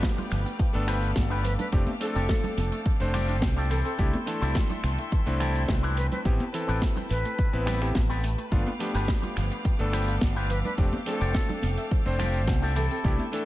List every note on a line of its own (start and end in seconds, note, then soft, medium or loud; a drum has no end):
0.00 0.13 F3 medium
0.00 0.70 A3 medium
0.00 0.70 B3 medium
0.00 0.71 D4 medium
0.00 0.71 G4 medium
0.00 1.70 B4 medium
0.00 3.67 F5 medium
0.00 1.70 G5 medium
0.00 3.67 D6 medium
0.00 kick loud
0.00 snare loud
0.00 closed hi-hat medium
0.00 tambourine soft
0.00 maracas soft
0.17 0.23 F4 medium
0.17 muted clean electric guitar stroke medium
0.17 closed hi-hat soft
0.17 tambourine soft
0.17 low conga medium
0.31 0.44 G1 loud
0.31 0.45 F3 medium
0.31 finger snap medium
0.31 muted clean electric guitar stroke soft
0.31 open hi-hat loud
0.31 tambourine medium
0.31 maracas loud
0.46 0.51 B3 medium
0.46 closed hi-hat soft
0.46 tambourine soft
0.46 maracas medium
0.59 0.69 F3 medium
0.59 muted fingered electric bass stroke soft
0.59 kick loud
0.59 closed hi-hat medium
0.59 tambourine soft
0.59 maracas soft
0.73 1.12 G1 medium
0.73 1.69 A3 loud
0.73 1.69 B3 medium
0.73 0.80 D4 medium
0.73 1.70 D4 medium
0.73 1.70 A4 loud
0.73 closed hi-hat soft
0.87 0.98 F3 medium
0.87 1.09 D4 loud
0.87 1.09 F4 loud
0.87 1.09 G4 loud
0.87 1.10 B4 loud
0.87 finger snap medium
0.87 open hi-hat loud
0.87 tambourine medium
0.87 maracas medium
1.02 1.08 F4 medium
1.02 closed hi-hat soft
1.02 tambourine soft
1.02 maracas soft
1.16 1.55 G1 medium
1.16 1.26 F3 medium
1.16 kick loud
1.16 snare loud
1.16 closed hi-hat medium
1.16 tambourine soft
1.16 high conga medium
1.16 maracas soft
1.30 1.36 B3 medium
1.30 1.44 D4 medium
1.30 1.44 F4 medium
1.30 1.44 G4 medium
1.30 1.45 B4 loud
1.30 closed hi-hat soft
1.44 1.58 F3 medium
1.44 1.54 B4 medium
1.44 open hi-hat loud
1.44 tambourine medium
1.44 maracas loud
1.59 1.64 D4 medium
1.59 1.68 B4 medium
1.59 muted clean electric guitar stroke soft
1.59 closed hi-hat soft
1.59 tambourine soft
1.59 low conga medium
1.59 maracas medium
1.72 1.85 F1 loud
1.72 1.82 F3 medium
1.72 1.89 A3 loud
1.72 1.89 C4 medium
1.72 1.90 D4 medium
1.72 1.90 G4 loud
1.72 3.69 A4 medium
1.72 8.48 G5 medium
1.72 kick loud
1.72 closed hi-hat medium
1.72 tambourine soft
1.72 maracas soft
1.87 1.93 A3 medium
1.87 closed hi-hat soft
1.87 high conga loud
2.00 2.11 F3 medium
2.00 2.97 A3 medium
2.00 2.97 C4 medium
2.00 2.97 D4 medium
2.00 2.80 A4 medium
2.00 2.98 A4 medium
2.00 open hi-hat loud
2.00 tambourine medium
2.00 maracas loud
2.15 2.27 F1 loud
2.15 2.21 C4 medium
2.15 2.29 D4 loud
2.15 2.29 F4 loud
2.15 2.29 G4 loud
2.15 2.30 A4 loud
2.15 closed hi-hat soft
2.15 tambourine soft
2.15 maracas medium
2.29 2.39 F3 medium
2.29 kick loud
2.29 snare loud
2.29 closed hi-hat medium
2.29 tambourine soft
2.29 maracas soft
2.43 2.49 D4 medium
2.43 muted clean electric guitar stroke medium
2.43 closed hi-hat soft
2.43 tambourine soft
2.43 low conga medium
2.57 2.70 F1 loud
2.57 2.71 F3 medium
2.57 muted clean electric guitar stroke soft
2.57 open hi-hat loud
2.57 tambourine medium
2.57 high conga medium
2.57 maracas loud
2.71 2.78 A3 medium
2.71 closed hi-hat soft
2.71 tambourine soft
2.71 maracas medium
2.85 2.96 F3 medium
2.85 kick loud
2.85 closed hi-hat medium
2.85 tambourine soft
2.85 maracas soft
3.00 3.42 F1 medium
3.00 3.69 A3 medium
3.00 3.69 C4 medium
3.00 3.06 C4 medium
3.00 3.69 D4 medium
3.00 3.70 C5 loud
3.00 closed hi-hat soft
3.13 3.24 F3 medium
3.13 3.35 D4 loud
3.13 3.35 F4 loud
3.13 3.36 G4 loud
3.13 3.36 A4 loud
3.13 finger snap medium
3.13 open hi-hat loud
3.13 tambourine medium
3.13 low conga medium
3.13 maracas medium
3.29 3.34 D4 medium
3.29 closed hi-hat soft
3.29 tambourine soft
3.29 maracas soft
3.42 3.81 C2 loud
3.42 3.53 F3 medium
3.42 kick loud
3.42 snare loud
3.42 closed hi-hat medium
3.42 tambourine soft
3.42 high conga medium
3.42 maracas soft
3.56 3.63 A3 medium
3.56 3.70 D4 medium
3.56 3.71 F4 medium
3.56 3.70 G4 medium
3.56 3.71 A4 loud
3.56 closed hi-hat soft
3.70 3.85 E3 medium
3.70 4.27 C4 loud
3.70 4.27 E4 medium
3.70 4.28 G4 medium
3.70 3.80 A4 loud
3.70 6.23 A4 medium
3.70 4.28 A4 loud
3.70 6.23 E5 medium
3.70 6.23 C6 medium
3.70 open hi-hat loud
3.70 tambourine medium
3.70 maracas medium
3.84 3.91 C4 medium
3.84 3.94 A4 medium
3.84 closed hi-hat soft
3.84 tambourine soft
3.84 maracas medium
3.98 4.11 C2 loud
3.98 4.09 E3 medium
3.98 4.15 A3 loud
3.98 4.15 D4 medium
3.98 4.16 E4 medium
3.98 4.16 G4 loud
3.98 kick loud
3.98 closed hi-hat medium
3.98 tambourine soft
3.98 maracas soft
4.13 4.19 A3 medium
4.13 closed hi-hat soft
4.13 high conga loud
4.26 4.37 E3 medium
4.26 5.23 A3 medium
4.26 5.23 D4 medium
4.26 5.23 E4 medium
4.26 5.24 A4 medium
4.26 open hi-hat loud
4.26 tambourine medium
4.26 maracas loud
4.41 4.53 C2 loud
4.41 4.55 C4 loud
4.41 4.48 C4 medium
4.41 4.56 E4 loud
4.41 4.56 G4 loud
4.41 4.56 A4 loud
4.41 snare soft
4.41 closed hi-hat soft
4.41 tambourine soft
4.41 maracas medium
4.55 4.66 E3 medium
4.55 kick loud
4.55 snare loud
4.55 closed hi-hat medium
4.55 tambourine soft
4.55 maracas soft
4.70 4.76 E4 medium
4.70 muted clean electric guitar stroke medium
4.70 closed hi-hat soft
4.70 tambourine soft
4.70 low conga medium
4.83 4.96 C2 loud
4.83 4.98 E3 medium
4.83 finger snap medium
4.83 muted clean electric guitar stroke soft
4.83 open hi-hat loud
4.83 tambourine medium
4.83 high conga medium
4.83 maracas loud
4.98 5.04 A3 medium
4.98 closed hi-hat soft
4.98 tambourine soft
4.98 maracas soft
5.11 5.22 E3 medium
5.11 muted fingered electric bass stroke soft
5.11 kick loud
5.11 closed hi-hat medium
5.11 tambourine soft
5.11 maracas soft
5.26 5.65 C2 medium
5.26 6.22 A3 loud
5.26 5.32 C4 medium
5.26 6.23 C4 loud
5.26 6.22 D4 medium
5.26 6.22 E4 medium
5.26 closed hi-hat soft
5.40 5.51 E3 medium
5.40 5.62 C4 loud
5.40 5.62 E4 loud
5.40 5.62 G4 loud
5.40 5.62 A4 loud
5.40 finger snap medium
5.40 open hi-hat loud
5.40 tambourine medium
5.40 maracas medium
5.55 5.61 E4 medium
5.55 closed hi-hat soft
5.55 tambourine soft
5.55 maracas soft
5.68 5.79 E3 medium
5.68 kick loud
5.68 snare loud
5.68 closed hi-hat medium
5.68 tambourine soft
5.68 high conga loud
5.68 maracas soft
5.82 5.89 A3 medium
5.82 5.97 C4 medium
5.82 5.97 E4 medium
5.82 5.97 G4 medium
5.82 5.97 B4 loud
5.82 closed hi-hat soft
5.97 6.11 E3 medium
5.97 6.06 B4 medium
5.97 open hi-hat loud
5.97 tambourine medium
5.97 maracas medium
6.11 6.18 C4 medium
6.11 6.20 B4 medium
6.11 muted clean electric guitar stroke soft
6.11 closed hi-hat soft
6.11 tambourine soft
6.11 low conga medium
6.11 maracas soft
6.25 6.38 A1 loud
6.25 6.36 E3 medium
6.25 6.42 B3 loud
6.25 6.42 C4 medium
6.25 6.42 E4 medium
6.25 6.42 G4 loud
6.25 10.74 B4 medium
6.25 8.50 A5 medium
6.25 kick loud
6.25 closed hi-hat medium
6.25 tambourine soft
6.25 maracas soft
6.40 6.46 A3 medium
6.40 closed hi-hat soft
6.40 high conga loud
6.53 6.64 E3 medium
6.53 7.50 C4 medium
6.53 7.50 E4 medium
6.53 7.50 A4 loud
6.53 7.49 B4 medium
6.53 open hi-hat loud
6.53 tambourine medium
6.53 maracas medium
6.67 6.80 A1 loud
6.67 6.74 B3 medium
6.67 6.81 C4 loud
6.67 6.82 G4 loud
6.67 6.82 A4 loud
6.67 6.82 B4 loud
6.67 closed hi-hat soft
6.67 tambourine soft
6.67 maracas medium
6.81 6.92 E3 medium
6.81 kick loud
6.81 snare loud
6.81 closed hi-hat medium
6.81 tambourine soft
6.81 maracas soft
6.96 7.03 C4 medium
6.96 muted clean electric guitar stroke medium
6.96 closed hi-hat soft
6.96 tambourine soft
6.96 low conga medium
7.09 7.23 A1 loud
7.09 7.24 E3 medium
7.09 7.67 B4 medium
7.09 muted clean electric guitar stroke soft
7.09 open hi-hat loud
7.09 tambourine medium
7.09 maracas loud
7.25 7.31 A3 medium
7.25 closed hi-hat soft
7.25 tambourine soft
7.25 maracas soft
7.38 7.49 E3 medium
7.38 kick loud
7.38 closed hi-hat medium
7.38 tambourine soft
7.38 maracas soft
7.53 7.92 A1 medium
7.53 7.79 B3 medium
7.53 7.59 B3 medium
7.53 7.79 C4 medium
7.53 7.79 E4 medium
7.53 7.79 B4 loud
7.53 closed hi-hat soft
7.66 7.73 G3 loud
7.66 7.88 C4 loud
7.66 7.88 G4 loud
7.66 7.88 A4 loud
7.66 7.89 B4 loud
7.66 finger snap medium
7.66 open hi-hat loud
7.66 tambourine medium
7.66 low conga medium
7.66 maracas medium
7.81 7.94 A3 medium
7.81 7.97 B3 medium
7.81 7.97 C4 medium
7.81 7.97 E4 medium
7.81 7.98 G4 loud
7.81 finger snap medium
7.81 closed hi-hat soft
7.81 tambourine soft
7.81 maracas medium
7.95 8.34 A1 loud
7.95 8.01 B3 medium
7.95 kick loud
7.95 snare loud
7.95 closed hi-hat medium
7.95 tambourine soft
7.95 high conga medium
7.95 maracas soft
8.09 8.19 B3 loud
8.09 8.23 C4 medium
8.09 8.23 G4 medium
8.09 8.24 A4 medium
8.09 8.24 B4 loud
8.09 closed hi-hat soft
8.23 8.30 A3 medium
8.23 open hi-hat loud
8.23 tambourine medium
8.23 maracas medium
8.37 8.48 A3 medium
8.37 muted clean electric guitar stroke soft
8.37 closed hi-hat soft
8.37 tambourine soft
8.37 maracas soft
8.51 8.64 G1 loud
8.51 8.62 F3 medium
8.51 8.68 A3 medium
8.51 8.69 B3 medium
8.51 8.69 D4 medium
8.51 8.69 F4 loud
8.51 12.72 F5 medium
8.51 13.45 G5 medium
8.51 12.72 D6 medium
8.51 kick loud
8.51 closed hi-hat medium
8.51 tambourine soft
8.51 maracas soft
8.66 8.72 B3 medium
8.66 closed hi-hat soft
8.66 high conga loud
8.79 8.90 F3 medium
8.79 9.76 A3 medium
8.79 9.76 B3 medium
8.79 9.76 D4 medium
8.79 9.77 G4 medium
8.79 open hi-hat loud
8.79 tambourine medium
8.79 maracas medium
8.94 9.06 G1 loud
8.94 9.08 D4 loud
8.94 9.01 D4 medium
8.94 9.08 F4 loud
8.94 9.08 G4 loud
8.94 9.09 B4 loud
8.94 snare soft
8.94 closed hi-hat soft
8.94 tambourine soft
8.94 maracas soft
9.08 9.19 F3 medium
9.08 kick loud
9.08 snare loud
9.08 closed hi-hat medium
9.08 tambourine soft
9.08 maracas soft
9.22 9.29 F4 medium
9.22 muted clean electric guitar stroke medium
9.22 closed hi-hat soft
9.22 tambourine soft
9.22 low conga medium
9.36 9.49 G1 loud
9.36 9.50 F3 medium
9.36 finger snap medium
9.36 muted clean electric guitar stroke soft
9.36 open hi-hat loud
9.36 tambourine medium
9.36 maracas medium
9.51 9.57 B3 medium
9.51 closed hi-hat soft
9.51 tambourine soft
9.51 maracas soft
9.65 9.75 F3 medium
9.65 muted fingered electric bass stroke soft
9.65 kick loud
9.65 closed hi-hat medium
9.65 tambourine soft
9.65 maracas soft
9.79 10.18 G1 medium
9.79 10.75 A3 loud
9.79 10.75 B3 medium
9.79 9.85 D4 medium
9.79 10.75 D4 medium
9.79 10.75 A4 loud
9.79 closed hi-hat soft
9.92 10.03 F3 medium
9.92 10.14 D4 loud
9.92 10.15 F4 loud
9.92 10.15 G4 loud
9.92 10.15 B4 loud
9.92 finger snap medium
9.92 open hi-hat loud
9.92 tambourine medium
9.92 maracas loud
10.08 10.13 F4 medium
10.08 closed hi-hat soft
10.08 tambourine soft
10.08 maracas soft
10.21 10.61 G1 medium
10.21 10.32 F3 medium
10.21 kick loud
10.21 snare loud
10.21 closed hi-hat medium
10.21 tambourine soft
10.21 high conga loud
10.21 maracas soft
10.35 10.42 B3 medium
10.35 10.49 D4 medium
10.35 10.50 F4 medium
10.35 10.50 G4 medium
10.35 10.50 B4 loud
10.35 closed hi-hat soft
10.50 10.64 F3 medium
10.50 10.59 B4 medium
10.50 open hi-hat loud
10.50 tambourine medium
10.50 maracas medium
10.64 10.70 D4 medium
10.64 10.73 B4 medium
10.64 muted clean electric guitar stroke soft
10.64 closed hi-hat soft
10.64 tambourine soft
10.64 low conga medium
10.64 maracas medium
10.78 10.90 F1 loud
10.78 10.88 F3 medium
10.78 10.95 A3 loud
10.78 10.95 C4 medium
10.78 10.95 D4 medium
10.78 10.95 G4 loud
10.78 13.45 A4 medium
10.78 kick loud
10.78 closed hi-hat medium
10.78 tambourine soft
10.78 maracas soft
10.93 10.99 A3 medium
10.93 closed hi-hat soft
10.93 high conga loud
11.06 11.17 F3 medium
11.06 12.02 A3 medium
11.06 12.03 C4 medium
11.06 12.03 D4 medium
11.06 11.86 A4 medium
11.06 12.03 A4 loud
11.06 open hi-hat loud
11.06 tambourine medium
11.06 maracas loud
11.20 11.32 F1 loud
11.20 11.27 C4 medium
11.20 11.34 D4 loud
11.20 11.35 F4 loud
11.20 11.35 G4 loud
11.20 11.35 A4 loud
11.20 closed hi-hat soft
11.20 tambourine soft
11.20 maracas medium
11.34 11.45 F3 medium
11.34 kick loud
11.34 snare loud
11.34 closed hi-hat medium
11.34 tambourine soft
11.34 maracas soft
11.49 11.55 D4 medium
11.49 muted clean electric guitar stroke medium
11.49 closed hi-hat soft
11.49 tambourine soft
11.49 low conga medium
11.62 11.75 F1 loud
11.62 11.77 F3 medium
11.62 muted clean electric guitar stroke soft
11.62 open hi-hat loud
11.62 tambourine medium
11.62 high conga medium
11.62 maracas medium
11.77 11.83 A3 medium
11.77 closed hi-hat soft
11.77 tambourine soft
11.77 maracas soft
11.91 12.02 F3 medium
11.91 kick loud
11.91 closed hi-hat medium
11.91 tambourine soft
11.91 maracas soft
12.05 12.48 F1 medium
12.05 12.74 A3 medium
12.05 12.75 C4 medium
12.05 12.12 C4 medium
12.05 12.75 D4 medium
12.05 12.75 C5 loud
12.05 closed hi-hat soft
12.19 12.30 F3 medium
12.19 12.41 D4 loud
12.19 12.41 F4 loud
12.19 12.41 G4 loud
12.19 12.41 A4 loud
12.19 finger snap medium
12.19 open hi-hat loud
12.19 tambourine medium
12.19 low conga medium
12.19 maracas medium
12.34 12.40 D4 medium
12.34 closed hi-hat soft
12.34 tambourine soft
12.34 maracas medium
12.47 12.87 C2 loud
12.47 12.58 F3 medium
12.47 kick loud
12.47 snare loud
12.47 closed hi-hat medium
12.47 tambourine soft
12.47 high conga medium
12.47 maracas soft
12.62 12.68 A3 medium
12.62 12.75 D4 loud
12.62 12.76 F4 medium
12.62 12.75 G4 medium
12.62 12.76 A4 loud
12.62 closed hi-hat soft
12.75 12.90 E3 medium
12.75 13.32 C4 loud
12.75 13.33 E4 medium
12.75 13.33 G4 medium
12.75 12.86 A4 medium
12.75 13.33 A4 loud
12.75 13.45 E5 medium
12.75 open hi-hat loud
12.75 tambourine medium
12.75 maracas medium
12.91 12.97 C4 medium
12.91 13.00 A4 medium
12.91 closed hi-hat soft
12.91 tambourine soft
12.91 maracas soft
13.04 13.17 C2 loud
13.04 13.15 E3 medium
13.04 13.21 A3 loud
13.04 13.21 D4 medium
13.04 13.21 E4 medium
13.04 13.22 G4 loud
13.04 kick loud
13.04 closed hi-hat medium
13.04 tambourine soft
13.04 maracas soft
13.19 13.25 A3 medium
13.19 closed hi-hat soft
13.19 high conga medium
13.32 13.43 E3 medium
13.32 13.45 A3 medium
13.32 13.45 D4 medium
13.32 13.45 E4 medium
13.32 13.45 A4 loud
13.32 open hi-hat loud
13.32 tambourine medium
13.32 maracas medium